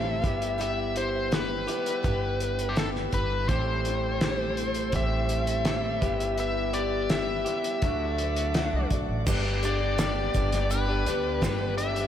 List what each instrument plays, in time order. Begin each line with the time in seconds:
Already playing: upright bass A1, clean electric guitar A2 E3 G3 C4 G4, steel-string acoustic guitar A2 E3 G3 C4 E4 A4, tonewheel organ A4 G5 C6 E6, lead electric guitar E5
0.22 upright bass G1, clean electric guitar G3 B3 E4 G4, steel-string acoustic guitar E4 G4 B4, tonewheel organ G4 E5, kick, closed hi-hat
0.42 closed hi-hat
0.58 steel-string acoustic guitar G3 E4 G4 B4, lead electric guitar E5, closed hi-hat
0.96 steel-string acoustic guitar E4 G4, lead electric guitar C5, closed hi-hat
1.31 steel-string acoustic guitar G3 E4 G4 B4, lead electric guitar B4, snare, closed hi-hat
1.67 clean electric guitar G3 B3 E4 G4, steel-string acoustic guitar E4 G4 B4, closed hi-hat
1.86 closed hi-hat
2.03 upright bass G1, steel-string acoustic guitar G3 E4 G4 B4, kick, closed hi-hat
2.40 closed hi-hat
2.59 closed hi-hat
2.69 lead electric guitar G4
2.76 steel-string acoustic guitar G3 E4 G4 B4, lead electric guitar A4, snare, closed hi-hat
2.96 snare
3.11 upright bass G1, steel-string acoustic guitar E4 G4 B4, lead electric guitar B4, kick, closed hi-hat
3.48 upright bass A1, clean electric guitar A2 G3 C4 E4 G4, steel-string acoustic guitar A2 E3 G3 C4 E4 C5, tonewheel organ A4 G5 C6 E6, lead electric guitar C5, kick, closed hi-hat
3.85 steel-string acoustic guitar G3 C4 E4 C5, closed hi-hat
4.21 steel-string acoustic guitar A2 E3 G3 C4 E4 C5, snare, closed hi-hat
4.57 steel-string acoustic guitar G3 C4 E4 C5, closed hi-hat
4.74 closed hi-hat
4.92 upright bass A1, clean electric guitar A2 G3 C4 E4 G4, steel-string acoustic guitar G3 C4 E4 C5, lead electric guitar E5, kick, closed hi-hat
5.29 closed hi-hat
5.47 closed hi-hat
5.65 steel-string acoustic guitar A2 E3 G3 C4 E4 C5, snare, closed hi-hat
6.01 upright bass G1, clean electric guitar G3 B3 E4 G4, steel-string acoustic guitar E4 G4 B4, tonewheel organ B4 E5, kick, closed hi-hat
6.20 closed hi-hat
6.37 steel-string acoustic guitar G3 E4 G4 B4, lead electric guitar E5, closed hi-hat
6.73 steel-string acoustic guitar E4 G4 B4, lead electric guitar D5, closed hi-hat
7.10 steel-string acoustic guitar G3 E4 G4 B4, lead electric guitar E5, snare, closed hi-hat
7.45 clean electric guitar G3 B3 E4 G4, steel-string acoustic guitar E4 G4 B4, closed hi-hat
7.64 closed hi-hat
7.81 upright bass D2, clean electric guitar D3 F#3 A3 D4 F#4, steel-string acoustic guitar A3 D4 F#4 D5, tonewheel organ A4 D5 F#5 D6, kick, closed hi-hat
8.18 closed hi-hat
8.36 closed hi-hat
8.54 steel-string acoustic guitar D3 A3 D4 F#4 D5, snare, closed hi-hat
8.73 upright bass C2
8.90 upright bass B1, steel-string acoustic guitar D4 F#4 D5, kick, closed hi-hat
9.09 upright bass A1
9.26 upright bass G1, clean electric guitar G2 D3 G3 B3 D4 G4, steel-string acoustic guitar G3 D4 G4 B4, tonewheel organ B4 D5 G5 D6, kick, crash, shaker
9.44 clean electric guitar G3 B3 D4 G4
9.62 clean electric guitar G3 B3 D4 G4, steel-string acoustic guitar D4 G4 B4, lead electric guitar D5, closed hi-hat, shaker
9.81 clean electric guitar G3 B3 D4 G4
9.98 clean electric guitar G2 D3 G3 B3 D4 G4, steel-string acoustic guitar G3 D4 G4 B4, lead electric guitar D5, snare, closed hi-hat, shaker
10.34 upright bass G1, clean electric guitar G3 B3 D4 G4, steel-string acoustic guitar D4 G4 B4, kick, closed hi-hat, shaker
10.52 clean electric guitar G3 B3 D4 G4, snare, closed hi-hat
10.70 steel-string acoustic guitar G3 D4 G4 B4, lead electric guitar B4, closed hi-hat, shaker
10.88 clean electric guitar G3 B3 D4 G4
11.06 upright bass D2, clean electric guitar G3 B3 D4 G4, steel-string acoustic guitar D4 G4 B4, closed hi-hat, shaker
11.41 upright bass G1, clean electric guitar G2 D3 G3 B3 D4 G4, steel-string acoustic guitar G3 D4 G4 B4, kick, snare, closed hi-hat, shaker
11.77 clean electric guitar G3 B3 D4 G4, lead electric guitar E5, closed hi-hat
11.96 clean electric guitar G3 B3 D4 G4, closed hi-hat